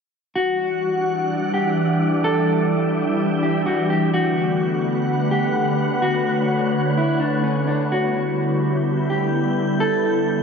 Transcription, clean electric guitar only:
0.35 1.50 F#4 loud
1.54 2.21 G4 medium
2.24 3.38 A4 loud
3.43 3.65 G4 medium
3.66 3.89 F#4 medium
3.90 4.12 G4 medium
4.14 5.28 F#4 loud
5.31 5.98 G4 loud
6.02 6.93 F#4 loud
6.97 7.20 E4 medium
7.20 7.43 D4 medium
7.44 7.66 C#4 medium
7.68 7.90 D4 medium
7.92 9.06 F#4 loud
9.10 9.77 G4 medium
9.80 10.43 A4 loud

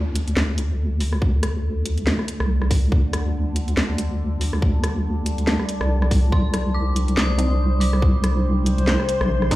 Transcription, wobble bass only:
0.00 0.35 D2 loud
0.36 2.17 D2 loud
2.40 2.91 C2 medium
2.92 3.76 D2 medium
3.77 5.58 D2 loud
5.81 6.31 C2 medium
6.32 7.16 C2 medium
7.17 8.98 C2 loud
9.21 9.56 A#1 medium

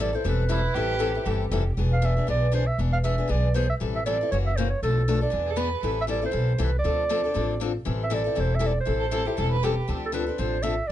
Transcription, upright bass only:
0.00 0.14 A1 medium
0.25 0.65 E1 medium
0.75 1.16 A1 medium
1.26 1.48 G1 medium
1.51 1.73 F1 medium
1.77 2.18 E1 medium
2.28 2.68 B1 medium
2.78 3.19 E1 medium
3.30 3.70 B1 medium
3.81 4.21 A1 medium
4.32 4.72 F#1 medium
4.82 5.23 B1 medium
5.33 5.74 E2 medium
5.83 6.24 A1 medium
6.34 6.56 B1 medium
6.59 6.81 C2 medium
6.84 7.25 D2 medium
7.36 7.76 A1 medium
7.86 8.27 A1 medium
8.38 8.78 E1 medium
8.87 9.28 A1 medium
9.38 9.78 E1 medium
9.88 10.28 D2 medium
10.39 10.79 A1 medium

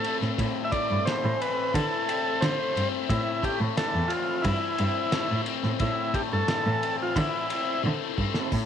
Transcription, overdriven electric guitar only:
0.00 0.39 A2 medium
0.00 1.07 E3 medium
0.00 0.73 A3 medium
0.00 1.74 E4 medium
0.05 1.40 C4 medium
0.39 3.08 A2 medium
0.73 2.42 A3 medium
1.07 3.76 E3 medium
1.41 2.08 C4 medium
1.74 4.43 E4 medium
2.08 2.74 C4 medium
2.42 3.42 A3 medium
2.75 4.09 C4 medium
3.08 5.80 A2 medium
3.42 5.12 A3 medium
3.76 6.49 E3 medium
4.09 4.78 C4 medium
4.44 6.14 E4 medium
4.78 5.45 C4 medium
5.13 6.13 A3 medium
5.46 6.82 C4 medium
5.80 7.50 A2 medium
6.14 7.83 A3 medium
6.49 8.19 E3 medium
6.83 7.49 C4 medium
7.17 8.53 E4 medium
7.50 8.17 C4 medium
7.84 8.52 A3 medium
8.18 8.52 C4 medium
8.53 8.66 A2 medium

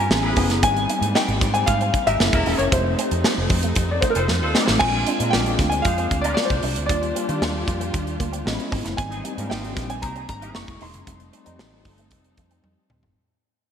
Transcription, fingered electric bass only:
0.10 0.32 A1 loud
0.37 0.63 F#1 loud
0.63 0.85 G#1 loud
1.01 1.13 G#2 loud
1.28 1.39 G#1 loud
1.42 1.64 G#2 loud
1.68 1.90 G#2 loud
2.07 2.18 G#1 medium
2.21 2.31 F#1 loud
2.34 2.44 E1 medium
2.47 2.57 E1 medium
2.59 2.70 F#1 medium
2.72 2.94 F1 loud
3.12 3.22 F2 medium
3.38 3.49 F1 loud
3.50 3.72 F2 medium
3.76 3.98 F2 loud
4.16 4.27 F1 loud
4.29 4.41 F2 medium
4.41 4.52 D#2 medium
4.69 4.79 A1 medium
4.81 5.03 A#1 loud
5.20 5.31 A#2 medium
5.34 5.56 A#1 medium
5.59 5.81 D2 medium
5.85 6.07 F2 loud
6.11 6.33 D2 loud
6.51 6.61 C2 medium
6.64 6.74 C2 loud
6.77 6.90 D2 medium
6.90 7.12 D#2 loud
7.29 7.40 D#3 medium
7.42 7.64 D#2 loud
7.68 7.90 F2 medium
7.94 8.16 D#2 medium
8.20 8.42 D2 medium
8.46 8.57 A1 loud
8.72 8.83 G#1 loud
8.86 8.96 F#1 medium
8.99 9.20 G#1 loud
9.38 9.48 G#2 medium
9.51 9.73 G#1 medium
9.77 10.03 A#1 medium
10.03 10.25 C2 loud
10.29 10.51 G#1 medium
10.56 10.66 F#1 loud
10.68 10.79 F#1 medium
10.82 10.94 E1 medium
10.94 11.05 F#1 medium
11.08 11.29 F1 loud
11.47 11.57 F2 loud
11.85 12.12 G1 medium
12.12 12.34 F1 loud
12.38 12.60 F2 medium
12.64 12.75 F2 medium
12.90 13.01 D2 medium
13.03 13.14 G1 medium

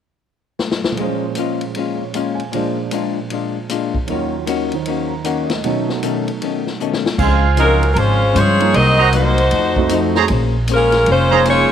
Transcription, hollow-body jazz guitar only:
0.98 1.24 A#2 soft
0.98 1.24 G#3 soft
0.98 1.25 C#4 soft
0.98 1.26 F4 medium
1.37 1.63 A#2 medium
1.37 1.64 G#3 medium
1.37 1.64 C#4 medium
1.37 1.64 F4 medium
1.76 2.02 A#2 soft
1.76 2.03 G#3 soft
1.76 2.03 C#4 medium
1.76 2.04 F4 soft
2.14 2.41 A#2 medium
2.14 2.41 G#3 medium
2.14 2.41 C#4 medium
2.14 2.42 F4 medium
2.52 2.79 A#2 soft
2.52 2.80 G#3 medium
2.52 2.80 D4 medium
2.52 2.81 F4 medium
2.92 3.18 A#2 medium
2.92 3.18 G#3 medium
2.92 3.19 D4 medium
2.92 3.19 F4 medium
3.31 3.57 A#2 soft
3.31 3.58 G#3 soft
3.31 3.58 D4 soft
3.31 3.59 F4 soft
3.70 3.96 A#2 medium
3.70 3.96 G#3 medium
3.70 3.97 D4 medium
3.70 3.97 F4 medium
4.09 4.35 D#3 soft
4.09 4.36 A#3 soft
4.09 4.36 C#4 soft
4.09 4.36 F#4 medium
4.46 4.73 D#3 medium
4.46 4.74 A#3 medium
4.46 4.74 C#4 medium
4.46 4.74 F#4 medium
4.87 5.13 D#3 soft
4.87 5.13 A#3 soft
4.87 5.14 C#4 soft
4.87 5.14 F#4 soft
5.25 5.51 D#3 medium
5.25 5.51 A#3 medium
5.25 5.52 C#4 medium
5.25 5.52 F#4 medium
5.63 5.90 B2 soft
5.63 5.90 D#3 soft
5.63 5.91 A3 soft
5.63 5.91 C#4 medium
6.03 6.29 B2 medium
6.03 6.29 D#3 medium
6.03 6.30 A3 medium
6.03 6.30 C#4 medium
6.41 6.68 B2 soft
6.41 6.68 D#3 soft
6.41 6.69 A3 soft
6.41 6.69 C#4 soft
6.80 7.06 B2 medium
6.80 7.07 D#3 medium
6.80 7.07 A3 medium
6.80 7.08 C#4 medium
7.18 7.45 C#3 soft
7.18 7.46 F3 medium
7.18 7.46 G#3 medium
7.18 7.47 C4 medium
7.56 7.83 C#3 medium
7.56 7.84 F3 medium
7.56 7.84 G#3 medium
7.56 7.85 C4 medium
7.95 8.22 C#3 soft
7.95 8.23 F3 soft
7.95 8.23 G#3 medium
7.95 8.24 C4 soft
8.33 8.61 C#3 medium
8.33 8.61 F3 medium
8.33 8.62 G#3 medium
8.33 8.62 C4 medium
8.74 9.00 C3 soft
8.74 9.01 F#3 soft
8.74 9.01 A#3 medium
8.74 9.02 D#4 soft
9.12 9.39 C3 medium
9.12 9.39 F#3 medium
9.12 9.39 A#3 medium
9.12 9.40 D#4 medium
9.52 9.78 F3 soft
9.52 9.79 A3 soft
9.52 9.79 D#4 soft
9.52 9.80 F#4 soft
9.90 10.16 F3 medium
9.90 10.17 A3 medium
9.90 10.17 D#4 medium
9.90 10.17 F#4 medium
10.29 10.55 A#3 medium
10.29 10.56 C#4 medium
10.29 10.57 G#4 medium
10.29 10.57 C5 medium
10.69 10.95 A#3 medium
10.69 10.95 C#4 medium
10.69 10.96 G#4 medium
10.69 10.96 C5 medium
11.08 11.34 A#3 soft
11.08 11.34 C#4 soft
11.08 11.35 G#4 soft
11.08 11.35 C5 soft
11.46 11.72 A#3 soft
11.46 11.72 C#4 medium
11.46 11.72 G#4 medium
11.46 11.72 C5 medium

